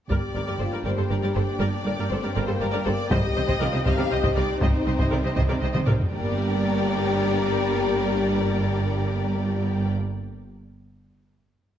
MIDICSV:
0, 0, Header, 1, 9, 480
1, 0, Start_track
1, 0, Key_signature, -2, "minor"
1, 0, Tempo, 501672
1, 100, Time_signature, 6, 3, 24, 8
1, 11272, End_track
2, 0, Start_track
2, 0, Title_t, "Violin section"
2, 0, Program_c, 0, 48
2, 90, Note_on_c, 0, 74, 40
2, 140, Note_off_c, 0, 74, 0
2, 336, Note_on_c, 0, 74, 28
2, 385, Note_off_c, 0, 74, 0
2, 452, Note_on_c, 0, 74, 40
2, 502, Note_off_c, 0, 74, 0
2, 570, Note_on_c, 0, 72, 29
2, 620, Note_off_c, 0, 72, 0
2, 686, Note_on_c, 0, 74, 31
2, 737, Note_off_c, 0, 74, 0
2, 809, Note_on_c, 0, 74, 39
2, 859, Note_off_c, 0, 74, 0
2, 932, Note_on_c, 0, 72, 33
2, 982, Note_off_c, 0, 72, 0
2, 1052, Note_on_c, 0, 74, 38
2, 1102, Note_off_c, 0, 74, 0
2, 1167, Note_on_c, 0, 74, 45
2, 1218, Note_off_c, 0, 74, 0
2, 1288, Note_on_c, 0, 72, 41
2, 1338, Note_off_c, 0, 72, 0
2, 1531, Note_on_c, 0, 74, 58
2, 1581, Note_off_c, 0, 74, 0
2, 1774, Note_on_c, 0, 74, 34
2, 1823, Note_off_c, 0, 74, 0
2, 1894, Note_on_c, 0, 74, 51
2, 1943, Note_off_c, 0, 74, 0
2, 2015, Note_on_c, 0, 72, 41
2, 2064, Note_off_c, 0, 72, 0
2, 2128, Note_on_c, 0, 74, 38
2, 2178, Note_off_c, 0, 74, 0
2, 2251, Note_on_c, 0, 74, 58
2, 2300, Note_off_c, 0, 74, 0
2, 2376, Note_on_c, 0, 72, 48
2, 2425, Note_off_c, 0, 72, 0
2, 2494, Note_on_c, 0, 74, 49
2, 2543, Note_off_c, 0, 74, 0
2, 2607, Note_on_c, 0, 74, 63
2, 2657, Note_off_c, 0, 74, 0
2, 2736, Note_on_c, 0, 72, 49
2, 2784, Note_off_c, 0, 72, 0
2, 2981, Note_on_c, 0, 75, 60
2, 3028, Note_off_c, 0, 75, 0
2, 3223, Note_on_c, 0, 75, 45
2, 3271, Note_off_c, 0, 75, 0
2, 3337, Note_on_c, 0, 75, 66
2, 3386, Note_off_c, 0, 75, 0
2, 3454, Note_on_c, 0, 74, 45
2, 3503, Note_off_c, 0, 74, 0
2, 3571, Note_on_c, 0, 75, 48
2, 3621, Note_off_c, 0, 75, 0
2, 3702, Note_on_c, 0, 75, 66
2, 3750, Note_off_c, 0, 75, 0
2, 3824, Note_on_c, 0, 74, 48
2, 3871, Note_off_c, 0, 74, 0
2, 3945, Note_on_c, 0, 75, 54
2, 3992, Note_off_c, 0, 75, 0
2, 4061, Note_on_c, 0, 75, 59
2, 4109, Note_off_c, 0, 75, 0
2, 4178, Note_on_c, 0, 74, 56
2, 4226, Note_off_c, 0, 74, 0
2, 4431, Note_on_c, 0, 75, 49
2, 4477, Note_off_c, 0, 75, 0
2, 4661, Note_on_c, 0, 75, 31
2, 4709, Note_off_c, 0, 75, 0
2, 4786, Note_on_c, 0, 75, 52
2, 4833, Note_off_c, 0, 75, 0
2, 4899, Note_on_c, 0, 74, 37
2, 4947, Note_off_c, 0, 74, 0
2, 5020, Note_on_c, 0, 75, 35
2, 5068, Note_off_c, 0, 75, 0
2, 5133, Note_on_c, 0, 75, 53
2, 5182, Note_off_c, 0, 75, 0
2, 5261, Note_on_c, 0, 74, 43
2, 5309, Note_off_c, 0, 74, 0
2, 5377, Note_on_c, 0, 75, 46
2, 5425, Note_off_c, 0, 75, 0
2, 5488, Note_on_c, 0, 75, 54
2, 5539, Note_off_c, 0, 75, 0
2, 5612, Note_on_c, 0, 74, 47
2, 5662, Note_off_c, 0, 74, 0
2, 5848, Note_on_c, 0, 74, 64
2, 9463, Note_off_c, 0, 74, 0
2, 11272, End_track
3, 0, Start_track
3, 0, Title_t, "Violin section"
3, 0, Program_c, 1, 48
3, 86, Note_on_c, 1, 74, 39
3, 774, Note_off_c, 1, 74, 0
3, 813, Note_on_c, 1, 72, 37
3, 1056, Note_off_c, 1, 72, 0
3, 1056, Note_on_c, 1, 70, 36
3, 1289, Note_on_c, 1, 74, 46
3, 1298, Note_off_c, 1, 70, 0
3, 2247, Note_on_c, 1, 72, 50
3, 2254, Note_off_c, 1, 74, 0
3, 2493, Note_off_c, 1, 72, 0
3, 2500, Note_on_c, 1, 70, 54
3, 2735, Note_on_c, 1, 74, 64
3, 2739, Note_off_c, 1, 70, 0
3, 2976, Note_on_c, 1, 75, 72
3, 2977, Note_off_c, 1, 74, 0
3, 3683, Note_off_c, 1, 75, 0
3, 3695, Note_on_c, 1, 77, 64
3, 3932, Note_off_c, 1, 77, 0
3, 3941, Note_on_c, 1, 75, 56
3, 4168, Note_on_c, 1, 74, 59
3, 4180, Note_off_c, 1, 75, 0
3, 4409, Note_off_c, 1, 74, 0
3, 4413, Note_on_c, 1, 72, 54
3, 5475, Note_off_c, 1, 72, 0
3, 5850, Note_on_c, 1, 70, 62
3, 9464, Note_off_c, 1, 70, 0
3, 11272, End_track
4, 0, Start_track
4, 0, Title_t, "French horn section"
4, 0, Program_c, 2, 60
4, 102, Note_on_c, 2, 67, 53
4, 547, Note_off_c, 2, 67, 0
4, 580, Note_on_c, 2, 65, 53
4, 807, Note_on_c, 2, 67, 61
4, 820, Note_off_c, 2, 65, 0
4, 1533, Note_off_c, 2, 67, 0
4, 1538, Note_on_c, 2, 62, 57
4, 2003, Note_on_c, 2, 60, 54
4, 2019, Note_off_c, 2, 62, 0
4, 2242, Note_on_c, 2, 58, 74
4, 2251, Note_off_c, 2, 60, 0
4, 2956, Note_off_c, 2, 58, 0
4, 2974, Note_on_c, 2, 67, 89
4, 3447, Note_on_c, 2, 65, 78
4, 3457, Note_off_c, 2, 67, 0
4, 3682, Note_on_c, 2, 67, 96
4, 3688, Note_off_c, 2, 65, 0
4, 4396, Note_off_c, 2, 67, 0
4, 4407, Note_on_c, 2, 63, 74
4, 5134, Note_off_c, 2, 63, 0
4, 5857, Note_on_c, 2, 67, 82
4, 9467, Note_off_c, 2, 67, 0
4, 11272, End_track
5, 0, Start_track
5, 0, Title_t, "String section"
5, 0, Program_c, 3, 48
5, 84, Note_on_c, 3, 62, 45
5, 84, Note_on_c, 3, 67, 41
5, 85, Note_on_c, 3, 58, 46
5, 85, Note_on_c, 3, 79, 41
5, 2933, Note_off_c, 3, 58, 0
5, 2933, Note_off_c, 3, 62, 0
5, 2986, Note_on_c, 3, 60, 71
5, 2989, Note_on_c, 3, 63, 65
5, 5814, Note_off_c, 3, 67, 0
5, 5814, Note_off_c, 3, 79, 0
5, 5864, Note_off_c, 3, 60, 0
5, 5864, Note_on_c, 3, 62, 71
5, 5865, Note_off_c, 3, 63, 0
5, 5866, Note_on_c, 3, 67, 69
5, 5866, Note_on_c, 3, 79, 69
5, 5869, Note_on_c, 3, 58, 72
5, 9471, Note_off_c, 3, 62, 0
5, 9472, Note_off_c, 3, 67, 0
5, 9472, Note_off_c, 3, 79, 0
5, 9473, Note_off_c, 3, 58, 0
5, 11272, End_track
6, 0, Start_track
6, 0, Title_t, "Viola section"
6, 0, Program_c, 4, 48
6, 94, Note_on_c, 4, 55, 42
6, 98, Note_on_c, 4, 70, 46
6, 143, Note_off_c, 4, 55, 0
6, 146, Note_off_c, 4, 70, 0
6, 336, Note_on_c, 4, 70, 29
6, 338, Note_on_c, 4, 55, 26
6, 385, Note_off_c, 4, 70, 0
6, 386, Note_off_c, 4, 55, 0
6, 449, Note_on_c, 4, 70, 46
6, 455, Note_on_c, 4, 55, 39
6, 499, Note_off_c, 4, 70, 0
6, 504, Note_off_c, 4, 55, 0
6, 573, Note_on_c, 4, 69, 31
6, 574, Note_on_c, 4, 55, 28
6, 622, Note_off_c, 4, 69, 0
6, 623, Note_off_c, 4, 55, 0
6, 697, Note_on_c, 4, 70, 33
6, 699, Note_on_c, 4, 55, 32
6, 746, Note_off_c, 4, 70, 0
6, 747, Note_off_c, 4, 55, 0
6, 808, Note_on_c, 4, 55, 47
6, 811, Note_on_c, 4, 70, 45
6, 859, Note_off_c, 4, 55, 0
6, 861, Note_off_c, 4, 70, 0
6, 932, Note_on_c, 4, 55, 38
6, 936, Note_on_c, 4, 69, 31
6, 981, Note_off_c, 4, 55, 0
6, 984, Note_off_c, 4, 69, 0
6, 1050, Note_on_c, 4, 70, 34
6, 1052, Note_on_c, 4, 55, 34
6, 1100, Note_off_c, 4, 70, 0
6, 1101, Note_off_c, 4, 55, 0
6, 1175, Note_on_c, 4, 55, 54
6, 1176, Note_on_c, 4, 70, 52
6, 1224, Note_off_c, 4, 55, 0
6, 1224, Note_off_c, 4, 70, 0
6, 1285, Note_on_c, 4, 55, 33
6, 1289, Note_on_c, 4, 69, 36
6, 1336, Note_off_c, 4, 55, 0
6, 1339, Note_off_c, 4, 69, 0
6, 1525, Note_on_c, 4, 55, 50
6, 1530, Note_on_c, 4, 70, 52
6, 1576, Note_off_c, 4, 55, 0
6, 1580, Note_off_c, 4, 70, 0
6, 1775, Note_on_c, 4, 55, 41
6, 1777, Note_on_c, 4, 70, 35
6, 1824, Note_off_c, 4, 55, 0
6, 1825, Note_off_c, 4, 70, 0
6, 1898, Note_on_c, 4, 70, 54
6, 1904, Note_on_c, 4, 55, 58
6, 1946, Note_off_c, 4, 70, 0
6, 1951, Note_off_c, 4, 55, 0
6, 2027, Note_on_c, 4, 55, 36
6, 2027, Note_on_c, 4, 69, 41
6, 2073, Note_off_c, 4, 55, 0
6, 2073, Note_off_c, 4, 69, 0
6, 2139, Note_on_c, 4, 70, 41
6, 2140, Note_on_c, 4, 55, 39
6, 2187, Note_off_c, 4, 70, 0
6, 2188, Note_off_c, 4, 55, 0
6, 2251, Note_on_c, 4, 55, 67
6, 2252, Note_on_c, 4, 70, 59
6, 2301, Note_off_c, 4, 55, 0
6, 2301, Note_off_c, 4, 70, 0
6, 2368, Note_on_c, 4, 55, 39
6, 2368, Note_on_c, 4, 69, 42
6, 2418, Note_off_c, 4, 55, 0
6, 2418, Note_off_c, 4, 69, 0
6, 2490, Note_on_c, 4, 55, 52
6, 2492, Note_on_c, 4, 70, 52
6, 2540, Note_off_c, 4, 55, 0
6, 2541, Note_off_c, 4, 70, 0
6, 2606, Note_on_c, 4, 55, 60
6, 2608, Note_on_c, 4, 70, 73
6, 2657, Note_off_c, 4, 55, 0
6, 2658, Note_off_c, 4, 70, 0
6, 2729, Note_on_c, 4, 69, 48
6, 2730, Note_on_c, 4, 55, 42
6, 2779, Note_off_c, 4, 69, 0
6, 2780, Note_off_c, 4, 55, 0
6, 2976, Note_on_c, 4, 55, 74
6, 2978, Note_on_c, 4, 72, 67
6, 3025, Note_off_c, 4, 55, 0
6, 3026, Note_off_c, 4, 72, 0
6, 3211, Note_on_c, 4, 55, 44
6, 3211, Note_on_c, 4, 72, 44
6, 3260, Note_off_c, 4, 55, 0
6, 3260, Note_off_c, 4, 72, 0
6, 3321, Note_on_c, 4, 72, 62
6, 3322, Note_on_c, 4, 55, 68
6, 3372, Note_off_c, 4, 72, 0
6, 3373, Note_off_c, 4, 55, 0
6, 3452, Note_on_c, 4, 55, 54
6, 3453, Note_on_c, 4, 70, 49
6, 3501, Note_off_c, 4, 55, 0
6, 3502, Note_off_c, 4, 70, 0
6, 3564, Note_on_c, 4, 55, 43
6, 3569, Note_on_c, 4, 72, 48
6, 3615, Note_off_c, 4, 55, 0
6, 3619, Note_off_c, 4, 72, 0
6, 3690, Note_on_c, 4, 72, 63
6, 3691, Note_on_c, 4, 55, 63
6, 3740, Note_off_c, 4, 72, 0
6, 3741, Note_off_c, 4, 55, 0
6, 3803, Note_on_c, 4, 55, 47
6, 3805, Note_on_c, 4, 70, 54
6, 3854, Note_off_c, 4, 55, 0
6, 3856, Note_off_c, 4, 70, 0
6, 3922, Note_on_c, 4, 55, 55
6, 3924, Note_on_c, 4, 72, 44
6, 3974, Note_off_c, 4, 55, 0
6, 3975, Note_off_c, 4, 72, 0
6, 4037, Note_on_c, 4, 72, 61
6, 4041, Note_on_c, 4, 55, 66
6, 4090, Note_off_c, 4, 72, 0
6, 4093, Note_off_c, 4, 55, 0
6, 4167, Note_on_c, 4, 55, 47
6, 4171, Note_on_c, 4, 70, 42
6, 4218, Note_off_c, 4, 55, 0
6, 4221, Note_off_c, 4, 70, 0
6, 4406, Note_on_c, 4, 55, 65
6, 4410, Note_on_c, 4, 72, 53
6, 4457, Note_off_c, 4, 55, 0
6, 4460, Note_off_c, 4, 72, 0
6, 4645, Note_on_c, 4, 55, 37
6, 4646, Note_on_c, 4, 72, 37
6, 4696, Note_off_c, 4, 55, 0
6, 4697, Note_off_c, 4, 72, 0
6, 4758, Note_on_c, 4, 55, 52
6, 4764, Note_on_c, 4, 72, 59
6, 4811, Note_off_c, 4, 55, 0
6, 4815, Note_off_c, 4, 72, 0
6, 4886, Note_on_c, 4, 70, 38
6, 4887, Note_on_c, 4, 55, 43
6, 4936, Note_off_c, 4, 70, 0
6, 4938, Note_off_c, 4, 55, 0
6, 5010, Note_on_c, 4, 72, 36
6, 5014, Note_on_c, 4, 55, 37
6, 5060, Note_off_c, 4, 72, 0
6, 5063, Note_off_c, 4, 55, 0
6, 5127, Note_on_c, 4, 55, 57
6, 5127, Note_on_c, 4, 72, 49
6, 5177, Note_off_c, 4, 55, 0
6, 5177, Note_off_c, 4, 72, 0
6, 5247, Note_on_c, 4, 55, 41
6, 5248, Note_on_c, 4, 70, 37
6, 5298, Note_off_c, 4, 55, 0
6, 5299, Note_off_c, 4, 70, 0
6, 5378, Note_on_c, 4, 55, 38
6, 5381, Note_on_c, 4, 72, 38
6, 5426, Note_off_c, 4, 55, 0
6, 5429, Note_off_c, 4, 72, 0
6, 5494, Note_on_c, 4, 55, 62
6, 5498, Note_on_c, 4, 72, 52
6, 5543, Note_off_c, 4, 55, 0
6, 5546, Note_off_c, 4, 72, 0
6, 5611, Note_on_c, 4, 55, 37
6, 5611, Note_on_c, 4, 70, 38
6, 5661, Note_off_c, 4, 55, 0
6, 5661, Note_off_c, 4, 70, 0
6, 5847, Note_on_c, 4, 55, 70
6, 9462, Note_off_c, 4, 55, 0
6, 11272, End_track
7, 0, Start_track
7, 0, Title_t, "Cello section"
7, 0, Program_c, 5, 48
7, 101, Note_on_c, 5, 43, 43
7, 149, Note_off_c, 5, 43, 0
7, 344, Note_on_c, 5, 43, 28
7, 391, Note_off_c, 5, 43, 0
7, 456, Note_on_c, 5, 43, 37
7, 505, Note_off_c, 5, 43, 0
7, 572, Note_on_c, 5, 43, 31
7, 622, Note_off_c, 5, 43, 0
7, 696, Note_on_c, 5, 43, 31
7, 745, Note_off_c, 5, 43, 0
7, 817, Note_on_c, 5, 43, 48
7, 866, Note_off_c, 5, 43, 0
7, 934, Note_on_c, 5, 43, 38
7, 983, Note_off_c, 5, 43, 0
7, 1062, Note_on_c, 5, 43, 32
7, 1110, Note_off_c, 5, 43, 0
7, 1173, Note_on_c, 5, 43, 45
7, 1222, Note_off_c, 5, 43, 0
7, 1298, Note_on_c, 5, 43, 35
7, 1346, Note_off_c, 5, 43, 0
7, 1536, Note_on_c, 5, 43, 48
7, 1585, Note_off_c, 5, 43, 0
7, 1774, Note_on_c, 5, 43, 33
7, 1823, Note_off_c, 5, 43, 0
7, 1895, Note_on_c, 5, 43, 53
7, 1944, Note_off_c, 5, 43, 0
7, 2020, Note_on_c, 5, 43, 39
7, 2067, Note_off_c, 5, 43, 0
7, 2135, Note_on_c, 5, 43, 47
7, 2184, Note_off_c, 5, 43, 0
7, 2254, Note_on_c, 5, 43, 65
7, 2303, Note_off_c, 5, 43, 0
7, 2375, Note_on_c, 5, 43, 48
7, 2424, Note_off_c, 5, 43, 0
7, 2499, Note_on_c, 5, 43, 45
7, 2547, Note_off_c, 5, 43, 0
7, 2615, Note_on_c, 5, 43, 61
7, 2664, Note_off_c, 5, 43, 0
7, 2736, Note_on_c, 5, 43, 44
7, 2784, Note_off_c, 5, 43, 0
7, 2973, Note_on_c, 5, 48, 68
7, 3022, Note_off_c, 5, 48, 0
7, 3223, Note_on_c, 5, 48, 43
7, 3270, Note_off_c, 5, 48, 0
7, 3338, Note_on_c, 5, 48, 69
7, 3386, Note_off_c, 5, 48, 0
7, 3460, Note_on_c, 5, 48, 49
7, 3508, Note_off_c, 5, 48, 0
7, 3586, Note_on_c, 5, 48, 55
7, 3632, Note_off_c, 5, 48, 0
7, 3706, Note_on_c, 5, 48, 72
7, 3753, Note_off_c, 5, 48, 0
7, 3818, Note_on_c, 5, 48, 50
7, 3866, Note_off_c, 5, 48, 0
7, 3936, Note_on_c, 5, 48, 42
7, 3985, Note_off_c, 5, 48, 0
7, 4062, Note_on_c, 5, 48, 57
7, 4110, Note_off_c, 5, 48, 0
7, 4182, Note_on_c, 5, 48, 40
7, 4229, Note_off_c, 5, 48, 0
7, 4418, Note_on_c, 5, 48, 58
7, 4467, Note_off_c, 5, 48, 0
7, 4656, Note_on_c, 5, 48, 36
7, 4705, Note_off_c, 5, 48, 0
7, 4774, Note_on_c, 5, 48, 49
7, 4824, Note_off_c, 5, 48, 0
7, 4898, Note_on_c, 5, 48, 38
7, 4946, Note_off_c, 5, 48, 0
7, 5016, Note_on_c, 5, 48, 41
7, 5065, Note_off_c, 5, 48, 0
7, 5141, Note_on_c, 5, 48, 58
7, 5189, Note_off_c, 5, 48, 0
7, 5258, Note_on_c, 5, 48, 44
7, 5307, Note_off_c, 5, 48, 0
7, 5379, Note_on_c, 5, 48, 41
7, 5428, Note_off_c, 5, 48, 0
7, 5505, Note_on_c, 5, 48, 52
7, 5552, Note_off_c, 5, 48, 0
7, 5626, Note_on_c, 5, 48, 38
7, 5673, Note_off_c, 5, 48, 0
7, 5864, Note_on_c, 5, 43, 59
7, 9471, Note_off_c, 5, 43, 0
7, 11272, End_track
8, 0, Start_track
8, 0, Title_t, "Double bass section"
8, 0, Program_c, 6, 48
8, 87, Note_on_c, 6, 31, 42
8, 138, Note_off_c, 6, 31, 0
8, 323, Note_on_c, 6, 31, 32
8, 374, Note_off_c, 6, 31, 0
8, 562, Note_on_c, 6, 31, 30
8, 614, Note_off_c, 6, 31, 0
8, 804, Note_on_c, 6, 31, 42
8, 855, Note_off_c, 6, 31, 0
8, 1052, Note_on_c, 6, 31, 30
8, 1101, Note_off_c, 6, 31, 0
8, 1291, Note_on_c, 6, 31, 36
8, 1341, Note_off_c, 6, 31, 0
8, 1525, Note_on_c, 6, 31, 53
8, 1576, Note_off_c, 6, 31, 0
8, 1770, Note_on_c, 6, 31, 41
8, 1820, Note_off_c, 6, 31, 0
8, 2011, Note_on_c, 6, 31, 37
8, 2060, Note_off_c, 6, 31, 0
8, 2258, Note_on_c, 6, 31, 58
8, 2306, Note_off_c, 6, 31, 0
8, 2489, Note_on_c, 6, 31, 41
8, 2539, Note_off_c, 6, 31, 0
8, 2740, Note_on_c, 6, 31, 47
8, 2787, Note_off_c, 6, 31, 0
8, 2981, Note_on_c, 6, 36, 70
8, 3028, Note_off_c, 6, 36, 0
8, 3221, Note_on_c, 6, 36, 48
8, 3269, Note_off_c, 6, 36, 0
8, 3460, Note_on_c, 6, 36, 52
8, 3508, Note_off_c, 6, 36, 0
8, 3699, Note_on_c, 6, 36, 67
8, 3747, Note_off_c, 6, 36, 0
8, 3936, Note_on_c, 6, 36, 44
8, 3985, Note_off_c, 6, 36, 0
8, 4170, Note_on_c, 6, 36, 44
8, 4220, Note_off_c, 6, 36, 0
8, 4420, Note_on_c, 6, 36, 59
8, 4468, Note_off_c, 6, 36, 0
8, 4662, Note_on_c, 6, 36, 40
8, 4709, Note_off_c, 6, 36, 0
8, 4892, Note_on_c, 6, 36, 39
8, 4942, Note_off_c, 6, 36, 0
8, 5133, Note_on_c, 6, 36, 53
8, 5183, Note_off_c, 6, 36, 0
8, 5375, Note_on_c, 6, 36, 37
8, 5424, Note_off_c, 6, 36, 0
8, 5619, Note_on_c, 6, 36, 39
8, 5667, Note_off_c, 6, 36, 0
8, 5863, Note_on_c, 6, 31, 63
8, 9470, Note_off_c, 6, 31, 0
8, 11272, End_track
9, 0, Start_track
9, 0, Title_t, "Taiko and cinematic ensemble drums"
9, 94, Note_on_c, 9, 41, 46
9, 190, Note_off_c, 9, 41, 0
9, 2977, Note_on_c, 9, 41, 83
9, 3072, Note_off_c, 9, 41, 0
9, 3335, Note_on_c, 9, 41, 59
9, 3431, Note_off_c, 9, 41, 0
9, 3691, Note_on_c, 9, 41, 68
9, 3787, Note_off_c, 9, 41, 0
9, 4049, Note_on_c, 9, 41, 73
9, 4145, Note_off_c, 9, 41, 0
9, 4413, Note_on_c, 9, 41, 82
9, 4509, Note_off_c, 9, 41, 0
9, 4775, Note_on_c, 9, 41, 62
9, 4871, Note_off_c, 9, 41, 0
9, 5131, Note_on_c, 9, 41, 72
9, 5226, Note_off_c, 9, 41, 0
9, 5497, Note_on_c, 9, 47, 80
9, 5593, Note_off_c, 9, 47, 0
9, 5614, Note_on_c, 9, 45, 74
9, 5710, Note_off_c, 9, 45, 0
9, 5739, Note_on_c, 9, 43, 78
9, 5835, Note_off_c, 9, 43, 0
9, 11272, End_track
0, 0, End_of_file